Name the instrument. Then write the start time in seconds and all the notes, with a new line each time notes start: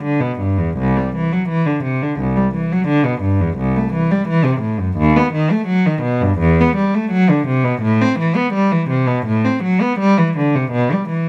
cello
0.04 D3
0.20 B2
0.40 G2
0.58 E2
0.78 C2
0.96 G3
1.15 E3
1.32 F#3
1.49 E3
1.66 D3
1.84 C3
2.02 D3
2.20 C2
2.36 G3
2.54 E3
2.72 F#3
2.87 D3
3.05 B2
3.21 G2
3.41 E2
3.57 C2
3.76 A3
3.93 E3
4.11 G3
4.28 E3
4.44 C3
4.61 A2
4.79 F#2
4.97 D#2
5.16 B3
5.33 D#3
5.51 A3
5.67 F#3
5.86 D#3
6.02 B2
6.21 G2
6.39 E2
6.61 B3
6.76 G3
6.95 A3
7.11 F#3
7.30 D3
7.47 C3
7.64 B2
7.82 A2
8.01 C4
8.19 E3
8.36 B3
8.53 G3
8.72 E3
8.90 C3
9.07 B2
9.26 A2
9.45 C4
9.63 F#3
9.81 B3
9.99 G3
10.18 E3
10.38 D3
10.55 C3
10.72 B2
10.92 G3
11.09 E3